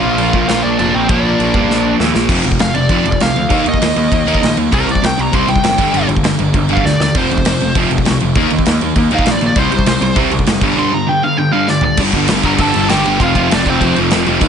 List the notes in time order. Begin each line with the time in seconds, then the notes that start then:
Already playing: A#2 F3 A#3 F4 F5
0.04 A#1
0.18 A#1, crash
0.33 A#1 A#2 F3 A#3, kick
0.49 A#1 F4 F5, snare, crash
0.63 A#1 D4 D5
0.78 F1 A#2 F3 A#3 D4 D5, crash
0.94 A#1 C4 C5
1.09 A#1 A#2 F3 A#3 D4 D5, kick, crash
1.40 A#1, crash
1.54 G2 A#2 F3 A#3, kick
1.69 A#1, snare
2.00 D#2 A#2 F3 A#3, snare
2.15 A#1, snare
2.29 F1 F2 C3 F3, kick, crash
2.44 F1 F2 C3, crash
2.52 kick
2.59 F1 F2 C3 F5, snare, crash
2.74 F1 F2 C3 D5, crash
2.89 F1 F2 C3 F3, kick, crash
3.05 F1 F2 C3, crash
3.12 kick
3.20 C2 F2 C3 F5, snare, crash
3.35 D2 F2 C3, crash
3.49 D#2 D#3 A#3 D#4, kick, crash
3.65 D#2 D#3 A#3 D#5, crash
3.74 kick
3.81 D#2 D#3 A#3, snare, crash
3.96 D#2 D#3 A#3, crash
4.12 D#2 D#3 A#3, kick, crash
4.27 D#2 D#3 A#3 D#4, crash
4.34 kick
4.42 A#1 D#3 A#3, snare, crash
4.57 D#2 D#3 A#3, crash
4.72 C2 C3 G3 C4 A#4, kick, crash
4.87 C2 C3 G3, crash
4.91 D5, kick
5.02 C2 C3 G3 G5, snare, crash
5.18 C2 C3 G3 A#5, crash
5.33 C2 C3 G3 C4 C6, kick, crash
5.47 C2 C3 G3 G5, crash
5.56 kick
5.64 G1 C3 G3, snare, crash
5.78 G1 G2 D3 G3, kick, crash
5.93 G1 G2 D3 G3, crash
6.08 G1 G2 D3, crash
6.17 kick
6.23 G1 G2 D3, snare, crash
6.39 G1 G2 D3, crash
6.54 G1 G2 D3, kick, crash
6.69 G1 G2 D3 G3, crash
6.73 F5, kick
6.85 D2 G2 D3 D5, snare
7.00 D#2 G2 D3 D5, snare
7.15 F1 F2 C3 F3 C5, kick, crash
7.31 F1 F2 C3, crash
7.38 kick
7.45 F1 F2 C3, snare, crash
7.60 F1 F2 C3, crash
7.75 F1 F2 C3 F3, kick, crash
7.91 F1 F2 C3, crash
7.98 kick
8.05 C2 F2 C3, snare, crash
8.20 F1 F2 C3, crash
8.35 D#2 D#3 A#3 D#4, kick, crash
8.50 D#2 D#3 A#3, crash
8.59 kick
8.66 D#2 D#3 A#3, snare, crash
8.81 D#2 D#3 A#3, crash
8.96 D#2 D#3 A#3, kick, crash
9.11 D#2 D#3 A#3 D#4, crash
9.15 F5, kick
9.26 A#1 D#3 A#3, snare, crash
9.31 D5
9.41 A#1 D#3 A#3, crash
9.46 D5
9.56 C2 C3 G3 C4 C5, kick, crash
9.70 C2 C3 G3, crash
9.79 kick
9.86 C2 C3 G3, snare, crash
10.00 C2 C3 G3, crash
10.16 C2 C3 G3 C4, kick, crash
10.31 C2 C3 G3, crash
10.39 kick
10.46 F1 C3 G3, snare, crash
10.61 G1 G2 D3 G3, kick, crash
10.76 G2 D3 G3 C6
10.91 G2 D3 A#5
11.07 G2 D3 G5
11.23 G2 D3 F5
11.37 G2 D3 G5
11.52 G2 D3 G3 F5
11.68 G2 D3 D5, snare
11.81 G2 D3 D5, floor tom
11.97 G1 G2 D3 G3, kick, crash
12.12 G1 G2 D3 G3, kick, crash
12.28 G1 G2 D3 G3, snare, crash
12.43 G1 G2 D3 G3 A#4 A#5, kick, crash
12.59 G1 G2 D3 G3 A4 A5, kick, crash
12.74 G1 G2 D3 G3, crash
12.89 G1 G2 D3 G3 G4 G5, snare, crash
13.05 G1 G2 D3 G3, crash
13.19 F1 F2 C3 F3 F4, kick, crash
13.23 F5
13.35 F1 F2 C3 F3, kick, crash
13.50 F1 F2 C3 F3 D4, snare, crash
13.55 D5
13.66 F1 F2 C3 F3 C4 C5, kick, crash
13.81 F1 F2 C3 F3, kick, crash
13.96 F1 F2 C3 F3, crash
14.11 F1 F2 C3 F3, snare, crash
14.26 F1 F2 C3 F3, crash
14.40 D#2 D#3 A#3 D#4, kick, crash